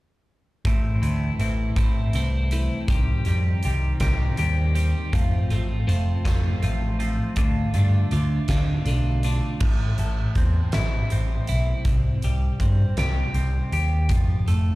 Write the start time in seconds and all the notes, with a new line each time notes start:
0.65 A1 E3 A3 C4 E4, kick, closed hi-hat
1.02 D2 E3 A3 C4 E4, closed hi-hat
1.39 A1 E3 A3 C4 E4, closed hi-hat
1.76 A1 E3 A3 C4 E4, kick, closed hi-hat
2.13 C2 E3 A3 C4 E4, closed hi-hat
2.51 E3 A3 C4 E4, closed hi-hat
2.88 C2 D#3 G3 C4 G4, kick, closed hi-hat
3.25 F2 D#3 G3 C4 G4, closed hi-hat
3.63 C2 D#3 G3 C4 G4, closed hi-hat
4.00 C2 D#3 G3 C4 G4, kick, snare, closed hi-hat
4.37 D#2 D#3 G3 C4 G4, closed hi-hat
4.75 D#3 G3 C4 G4, closed hi-hat
5.13 F1 F3 A3 C4 F4, kick, closed hi-hat
5.50 A1 F3 A3 C4 F4, closed hi-hat
5.87 F1 F3 A3 C4 F4, closed hi-hat
6.25 F1 F3 A3 C4 F4, kick, snare, closed hi-hat
6.62 A1 F3 A3 C4 F4, closed hi-hat
6.99 F3 A3 C4 F4, closed hi-hat
7.36 D2 D3 A3 D4 F4, kick, closed hi-hat
7.74 G2 D3 A3 D4 F4, closed hi-hat
8.11 D2 D3 A3 D4 F4, closed hi-hat
8.48 D2 D3 A3 D4 F4, kick, snare, closed hi-hat
8.86 B1 D3 A3 D4 F4, closed hi-hat
9.23 D3 A3 D4 F4, closed hi-hat
9.60 A1 A2, kick, crash
9.98 A1 A3, closed hi-hat
10.35 E2 C4, kick, closed hi-hat
10.72 A1 E4, snare, closed hi-hat
11.10 A1 C4, closed hi-hat
11.47 B1 E4, closed hi-hat
11.85 C2 C3, kick, closed hi-hat
12.22 C2 G3, closed hi-hat
12.60 G2 C4, kick, closed hi-hat
12.97 C2 G4, snare, closed hi-hat
13.34 C2 C4, closed hi-hat
13.72 D#2 G4, closed hi-hat
14.09 F1 F3, kick, closed hi-hat
14.48 F1 A3, closed hi-hat